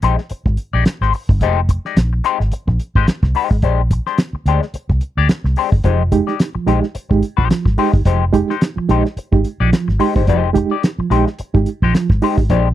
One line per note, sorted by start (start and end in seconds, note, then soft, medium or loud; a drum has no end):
0.02 0.15 A#1 medium
0.02 0.20 G#3 medium
0.02 0.18 D#4 medium
0.02 0.18 G4 medium
0.02 0.17 C5 medium
0.02 closed hi-hat medium
0.18 muted clean electric guitar stroke soft
0.18 snare soft
0.30 muted fingered electric bass stroke soft
0.30 muted clean electric guitar stroke soft
0.30 closed hi-hat medium
0.45 0.56 G#1 medium
0.45 muted clean electric guitar stroke soft
0.45 kick loud
0.57 closed hi-hat medium
0.73 0.84 A#1 medium
0.73 0.85 G#3 medium
0.73 0.86 D#4 medium
0.73 0.86 G4 medium
0.73 0.87 D5 medium
0.85 muted clean electric guitar stroke soft
0.85 snare loud
0.85 closed hi-hat medium
1.01 1.11 G#1 medium
1.01 1.13 G#3 medium
1.01 1.14 D#4 medium
1.01 1.14 G4 medium
1.01 1.14 C5 medium
1.01 snare soft
1.13 muted clean electric guitar stroke soft
1.13 open hi-hat medium
1.29 1.41 G1 medium
1.29 muted clean electric guitar stroke soft
1.29 kick loud
1.41 1.77 F1 loud
1.41 1.59 G#3 medium
1.41 1.60 D#4 loud
1.41 1.60 G4 loud
1.41 1.60 C5 loud
1.41 kick loud
1.41 closed hi-hat medium
1.69 muted clean electric guitar stroke soft
1.69 kick medium
1.69 closed hi-hat medium
1.85 1.97 G#3 medium
1.85 1.97 D#4 medium
1.85 1.96 G4 medium
1.85 1.96 D5 medium
1.85 snare soft
1.97 2.19 A#1 medium
1.97 snare loud
1.97 closed hi-hat medium
2.13 muted clean electric guitar stroke soft
2.24 2.42 G#3 medium
2.24 2.41 D#4 loud
2.24 2.40 G4 loud
2.24 2.39 C5 loud
2.24 closed hi-hat medium
2.40 2.50 G#1 medium
2.40 muted clean electric guitar stroke soft
2.40 snare soft
2.52 muted fingered electric bass stroke soft
2.52 muted clean electric guitar stroke medium
2.52 closed hi-hat medium
2.67 2.77 A#1 medium
2.67 muted clean electric guitar stroke medium
2.67 kick medium
2.79 closed hi-hat medium
2.95 3.05 G#1 medium
2.95 3.07 G#3 medium
2.95 3.08 D#4 medium
2.95 3.08 G4 medium
2.95 3.08 C5 medium
2.95 kick medium
3.08 snare loud
3.08 closed hi-hat medium
3.23 3.33 C2 loud
3.23 muted clean electric guitar stroke soft
3.23 kick medium
3.23 snare soft
3.35 3.56 G#3 medium
3.35 3.51 D#4 medium
3.35 3.51 G4 medium
3.35 3.50 C5 medium
3.35 open hi-hat medium
3.51 3.61 G#1 medium
3.51 muted clean electric guitar stroke soft
3.51 kick loud
3.62 3.98 A#1 loud
3.62 3.80 G#3 medium
3.62 3.81 D4 medium
3.62 3.81 G4 medium
3.62 3.81 C5 medium
3.62 kick loud
3.62 closed hi-hat medium
3.91 muted clean electric guitar stroke soft
3.91 kick medium
3.91 closed hi-hat medium
4.06 4.18 G#3 soft
4.06 4.18 D4 medium
4.06 4.18 G4 medium
4.06 4.17 C5 medium
4.06 snare soft
4.18 snare loud
4.18 closed hi-hat medium
4.33 muted fingered electric bass stroke soft
4.33 muted clean electric guitar stroke soft
4.46 4.58 D2 medium
4.46 4.64 G#3 medium
4.46 4.63 D4 medium
4.46 4.62 G4 medium
4.46 4.62 C5 medium
4.46 closed hi-hat medium
4.62 muted clean electric guitar stroke soft
4.62 snare soft
4.74 muted fingered electric bass stroke soft
4.74 muted clean electric guitar stroke soft
4.74 closed hi-hat medium
4.89 4.99 C2 medium
4.89 muted clean electric guitar stroke soft
4.89 kick medium
5.01 closed hi-hat medium
5.17 5.27 D2 medium
5.17 5.29 G#3 medium
5.17 5.29 D4 medium
5.17 5.29 G4 medium
5.17 5.31 D5 medium
5.29 muted fingered electric bass stroke soft
5.29 snare loud
5.29 closed hi-hat medium
5.44 5.54 C2 medium
5.44 muted clean electric guitar stroke soft
5.44 snare soft
5.56 5.74 G#3 medium
5.56 5.72 D4 medium
5.56 5.72 G4 medium
5.56 5.71 C5 medium
5.56 open hi-hat medium
5.72 5.82 G1 medium
5.72 muted clean electric guitar stroke soft
5.72 kick loud
5.84 6.20 F1 loud
5.84 6.02 F3 medium
5.84 6.02 G#3 medium
5.84 6.02 D#4 medium
5.84 6.02 G4 medium
5.84 6.02 C5 medium
5.84 kick loud
5.84 closed hi-hat medium
6.12 6.29 G#3 medium
6.12 6.27 D#4 medium
6.12 6.27 G4 medium
6.12 muted clean electric guitar stroke soft
6.12 kick medium
6.12 closed hi-hat medium
6.27 6.39 G#3 medium
6.27 6.39 D#4 medium
6.27 6.33 D#4 soft
6.27 6.39 G4 medium
6.27 6.33 G4 soft
6.27 6.38 D5 medium
6.27 snare soft
6.39 6.47 D#4 soft
6.39 6.46 G4 soft
6.39 snare loud
6.39 closed hi-hat medium
6.55 6.69 F3 medium
6.55 muted clean electric guitar stroke soft
6.55 muted fingered electric bass stroke soft
6.67 6.80 A#1 medium
6.67 6.84 G#3 medium
6.67 6.85 G#3 medium
6.67 6.84 D#4 medium
6.67 6.82 D#4 medium
6.67 6.84 G4 medium
6.67 6.81 G4 medium
6.67 6.80 C5 medium
6.67 closed hi-hat medium
6.82 muted clean electric guitar stroke soft
6.82 snare soft
6.95 muted clean electric guitar stroke soft
6.95 muted fingered electric bass stroke soft
6.95 closed hi-hat medium
7.10 7.21 G#1 loud
7.10 7.24 G#3 medium
7.10 7.24 D#4 medium
7.10 7.25 G4 medium
7.10 muted clean electric guitar stroke soft
7.10 kick medium
7.23 closed hi-hat medium
7.37 7.48 A#1 medium
7.37 7.49 F3 medium
7.37 7.49 G#3 medium
7.37 7.49 D#4 medium
7.37 7.49 G4 medium
7.37 7.50 C5 medium
7.37 kick medium
7.50 7.67 F3 medium
7.50 muted clean electric guitar stroke soft
7.50 muted fingered electric bass stroke soft
7.50 snare loud
7.50 closed hi-hat medium
7.65 7.76 G#1 medium
7.65 muted clean electric guitar stroke soft
7.65 kick medium
7.65 snare soft
7.78 7.95 G#3 medium
7.78 7.96 G#3 medium
7.78 7.92 D#4 medium
7.78 7.93 D#4 medium
7.78 7.92 G4 medium
7.78 7.93 G4 medium
7.78 7.93 C5 medium
7.78 open hi-hat medium
7.93 8.04 G1 medium
7.93 7.99 D#4 soft
7.93 7.99 G4 soft
7.93 muted clean electric guitar stroke soft
7.93 kick loud
8.05 8.41 F1 loud
8.05 8.22 F3 medium
8.05 8.23 G#3 medium
8.05 8.24 D#4 medium
8.05 8.24 G4 medium
8.05 8.24 C5 medium
8.05 kick loud
8.05 closed hi-hat medium
8.33 8.50 G#3 medium
8.33 8.47 D#4 medium
8.33 8.47 G4 loud
8.33 muted clean electric guitar stroke soft
8.33 kick medium
8.33 closed hi-hat medium
8.48 8.61 G#3 medium
8.48 8.54 D#4 soft
8.48 8.61 D#4 medium
8.48 8.54 G4 soft
8.48 8.61 G4 medium
8.48 8.61 C5 medium
8.48 snare soft
8.61 8.67 D#4 soft
8.61 8.67 G4 soft
8.61 snare loud
8.61 closed hi-hat medium
8.76 8.90 F3 medium
8.76 muted fingered electric bass stroke soft
8.76 muted clean electric guitar stroke medium
8.89 9.02 A#1 medium
8.89 9.06 G#3 medium
8.89 9.07 G#3 medium
8.89 9.06 D#4 medium
8.89 9.05 D#4 medium
8.89 9.06 G4 medium
8.89 9.05 G4 medium
8.89 9.04 C5 medium
8.89 closed hi-hat medium
9.05 muted clean electric guitar stroke medium
9.05 snare soft
9.17 muted fingered electric bass stroke soft
9.17 muted clean electric guitar stroke soft
9.17 closed hi-hat medium
9.32 9.43 G#1 medium
9.32 9.46 G#3 medium
9.32 9.46 D#4 medium
9.32 9.46 G4 medium
9.32 muted clean electric guitar stroke soft
9.32 kick medium
9.44 closed hi-hat medium
9.60 9.70 A#1 medium
9.60 9.71 F3 medium
9.60 9.71 G#3 medium
9.60 9.72 D#4 medium
9.60 9.72 G4 medium
9.60 9.73 D5 medium
9.72 9.89 F3 medium
9.72 muted fingered electric bass stroke soft
9.72 muted clean electric guitar stroke soft
9.72 snare loud
9.72 closed hi-hat medium
9.88 9.98 G#1 medium
9.88 muted clean electric guitar stroke soft
9.88 snare soft
9.99 10.14 G#3 medium
9.99 10.16 G#3 medium
9.99 10.14 D#4 medium
9.99 10.14 G4 medium
9.99 10.14 C5 medium
9.99 open hi-hat medium
10.15 10.28 G1 medium
10.15 10.28 G#3 soft
10.15 10.20 D#4 soft
10.15 10.27 D#4 medium
10.15 10.20 G4 soft
10.15 10.27 G4 medium
10.15 10.27 C5 medium
10.15 kick loud
10.27 10.63 F1 loud
10.27 10.44 F3 medium
10.27 10.49 G#3 medium
10.27 10.49 D#4 loud
10.27 10.49 G4 medium
10.27 10.49 C5 medium
10.27 kick loud
10.27 closed hi-hat medium
10.53 10.71 G#3 medium
10.53 10.69 D#4 medium
10.53 10.69 G4 loud
10.53 muted clean electric guitar stroke medium
10.53 kick medium
10.53 closed hi-hat medium
10.70 10.83 G#3 medium
10.70 10.75 D#4 soft
10.70 10.83 D#4 medium
10.70 10.76 G4 soft
10.70 10.83 G4 medium
10.70 10.82 D5 medium
10.82 10.89 D#4 soft
10.82 10.89 G4 soft
10.82 snare loud
10.82 closed hi-hat medium
10.98 11.12 F3 medium
10.98 muted fingered electric bass stroke soft
10.98 muted clean electric guitar stroke soft
11.10 11.23 A#1 medium
11.10 11.28 G#3 medium
11.10 11.27 D#4 medium
11.10 11.28 D#4 medium
11.10 11.28 G4 medium
11.10 11.26 G4 medium
11.10 11.26 C5 medium
11.10 closed hi-hat medium
11.27 muted clean electric guitar stroke soft
11.27 snare soft
11.39 muted fingered electric bass stroke soft
11.39 muted clean electric guitar stroke soft
11.39 closed hi-hat medium
11.54 11.64 G#1 medium
11.54 11.68 G#3 medium
11.54 11.68 D#4 medium
11.54 11.68 G4 medium
11.54 muted clean electric guitar stroke soft
11.54 kick loud
11.66 closed hi-hat medium
11.82 11.92 A#1 medium
11.82 11.93 F3 medium
11.82 11.94 G#3 medium
11.82 11.95 D#4 medium
11.82 11.95 G4 medium
11.82 11.95 C5 medium
11.82 kick medium
11.94 12.11 F3 medium
11.94 muted fingered electric bass stroke soft
11.94 muted clean electric guitar stroke soft
11.94 snare loud
11.94 closed hi-hat medium
12.10 12.20 G#1 medium
12.10 muted clean electric guitar stroke soft
12.10 kick loud
12.10 snare soft
12.22 12.39 G#3 medium
12.22 12.40 G#3 medium
12.22 12.37 D#4 medium
12.22 12.38 D#4 medium
12.22 12.37 G4 medium
12.22 12.38 G4 medium
12.22 12.38 C5 medium
12.22 open hi-hat medium
12.38 12.47 G#1 medium
12.38 12.42 D#4 soft
12.38 12.42 G4 soft
12.38 muted clean electric guitar stroke soft
12.38 kick loud
12.49 12.74 A#1 loud
12.49 12.66 A#2 medium
12.49 12.66 F3 medium
12.49 12.67 G#3 medium
12.49 12.67 D4 loud
12.49 12.68 G4 medium
12.49 12.68 C5 medium
12.49 kick loud
12.49 closed hi-hat medium